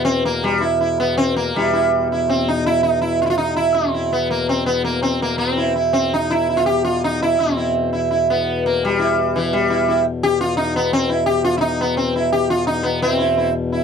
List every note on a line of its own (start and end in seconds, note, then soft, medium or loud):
0.00 1.52 E2 medium
0.00 1.52 B2 medium
0.05 0.24 C4 loud
0.25 0.43 A#3 medium
0.44 0.60 G3 medium
0.60 0.78 E4 soft
0.81 0.97 E4 soft
1.00 1.17 B3 medium
1.17 1.36 C4 loud
1.36 1.55 A#3 medium
1.53 7.36 E2 medium
1.53 7.37 B2 medium
1.53 2.07 G3 medium
1.53 1.72 E4 soft
1.73 1.90 E4 soft
2.12 2.28 E4 soft
2.29 2.48 C4 medium
2.48 2.66 D#4 medium
2.66 2.83 E4 medium
2.83 3.01 D#4 medium
3.01 3.21 E4 medium
3.22 3.25 F4 medium
3.26 3.30 E4 medium
3.30 3.37 F4 medium
3.38 3.56 D#4 medium
3.56 3.76 E4 medium
3.74 4.12 C4 medium
3.94 4.11 E4 soft
4.13 4.30 B3 medium
4.31 4.47 A#3 medium
4.49 4.66 C4 medium
4.66 4.84 B3 medium
4.84 5.02 A#3 medium
5.02 5.22 C4 medium
5.22 5.38 A#3 medium
5.38 5.73 C4 medium
5.57 5.74 E4 soft
5.75 5.93 E4 soft
5.93 6.12 C4 medium
6.14 6.32 D#4 medium
6.31 6.48 E4 medium
6.49 6.65 E4 soft
6.57 6.66 F4 medium
6.66 6.83 G4 loud
6.84 7.03 F4 medium
7.04 7.22 D#4 medium
7.22 7.40 E4 medium
7.38 13.00 E2 medium
7.38 13.01 B2 medium
7.38 7.89 C4 medium
7.57 7.73 E4 soft
7.93 8.09 E4 soft
8.11 8.27 E4 soft
8.30 8.65 B3 medium
8.66 8.83 A#3 medium
8.85 9.38 G3 medium
8.99 9.15 E4 soft
9.36 9.53 E3 medium
9.53 10.02 G3 medium
9.70 9.86 E4 soft
9.88 10.04 E4 soft
10.23 10.40 G4 loud
10.41 10.57 F4 loud
10.57 10.73 D#4 loud
10.76 10.93 B3 medium
10.93 11.09 C4 medium
11.09 11.26 E4 soft
11.26 11.44 G4 medium
11.44 11.57 F4 medium
11.57 11.79 D#4 medium
11.57 11.60 E4 medium
11.81 11.97 B3 medium
11.97 12.13 C4 medium
12.16 12.31 E4 soft
12.32 12.50 G4 medium
12.50 12.66 F4 medium
12.67 12.84 D#4 medium
12.83 13.01 B3 medium
13.02 13.84 E2 medium
13.02 13.84 B2 medium
13.02 13.50 C4 medium
13.02 13.18 E4 soft
13.19 13.34 E4 soft
13.37 13.52 E4 soft
13.72 13.84 E4 soft